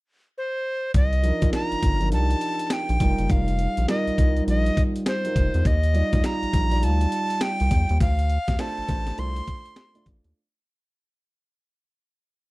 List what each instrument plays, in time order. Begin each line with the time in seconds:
0.38 recorder C5
0.94 analog synth bass C2, recorder D#5, kick, closed hi-hat
1.13 closed hi-hat
1.23 grand piano F3 D4 D#4 A#4, closed hi-hat
1.42 analog synth bass A#1, grand piano F3 D4 D#4 A#4, kick, closed hi-hat
1.53 recorder A#5, snare, closed hi-hat
1.72 analog synth bass G1, closed hi-hat
1.83 analog synth bass G1, kick, closed hi-hat
2.01 grand piano F3 D4 D#4 A#4, closed hi-hat
2.11 analog synth bass C2, grand piano F3 D4 D#4 G4, recorder A5, closed hi-hat
2.30 closed hi-hat
2.41 closed hi-hat
2.59 closed hi-hat
2.67 recorder A5, snare, closed hi-hat
2.73 recorder G5
2.89 analog synth bass A#1, closed hi-hat
3.00 analog synth bass F1, grand piano G3 D#4 F4 A#4, kick, closed hi-hat
3.18 analog synth bass F#1, closed hi-hat
3.29 analog synth bass F1, recorder F5, kick, closed hi-hat
3.48 closed hi-hat
3.59 closed hi-hat
3.77 analog synth bass A#1, closed hi-hat
3.88 grand piano G3 D#4 F4 A#4, recorder D#5, snare, closed hi-hat
4.07 analog synth bass C2, closed hi-hat
4.17 analog synth bass C2, grand piano G3 D#4 F4 A#4, kick, closed hi-hat
4.37 closed hi-hat
4.47 analog synth bass A#1, grand piano G3 D#4 F4 A#4, recorder D#5, closed hi-hat
4.66 closed hi-hat
4.77 kick, closed hi-hat
4.96 closed hi-hat
5.06 recorder C5, snare, closed hi-hat
5.24 grand piano G3 D#4 F4 A#4, closed hi-hat
5.36 analog synth bass F1, kick, closed hi-hat
5.54 analog synth bass E2, closed hi-hat
5.65 analog synth bass D#2, recorder D#5, kick, closed hi-hat
5.83 closed hi-hat
5.94 grand piano G3 D#4 F4 D5, closed hi-hat
6.12 analog synth bass D2, grand piano G3 D#4 F4 D5, kick, closed hi-hat
6.24 recorder A#5, snare, closed hi-hat
6.43 analog synth bass A#1, closed hi-hat
6.53 analog synth bass A#1, kick, closed hi-hat
6.71 grand piano G3 D#4 F4 D5, closed hi-hat
6.82 analog synth bass D2, grand piano G3 D#4 F4 F5, recorder A5, closed hi-hat
7.01 closed hi-hat
7.12 closed hi-hat
7.30 closed hi-hat
7.41 recorder G5, snare, closed hi-hat
7.60 analog synth bass C2, closed hi-hat
7.71 analog synth bass E2, kick, closed hi-hat
7.89 analog synth bass D#2, closed hi-hat
8.00 analog synth bass D2, recorder F5, kick, closed hi-hat
8.19 closed hi-hat
8.30 closed hi-hat
8.48 analog synth bass D2, kick, snare, closed hi-hat
8.58 grand piano A3 D4 F4 C5, recorder A5, snare, closed hi-hat
8.78 analog synth bass A1, closed hi-hat
8.88 analog synth bass A1, grand piano A3 D4 F4 C5, kick, closed hi-hat
9.07 snare, closed hi-hat
9.17 analog synth bass C2, grand piano A3 D4 F4 C5, recorder C6, closed hi-hat
9.36 closed hi-hat
9.47 kick, closed hi-hat
9.66 closed hi-hat
9.76 snare, closed hi-hat
9.94 grand piano A3 D4 F4 D5, closed hi-hat
10.06 analog synth bass A1, kick, closed hi-hat
10.24 analog synth bass D#2, closed hi-hat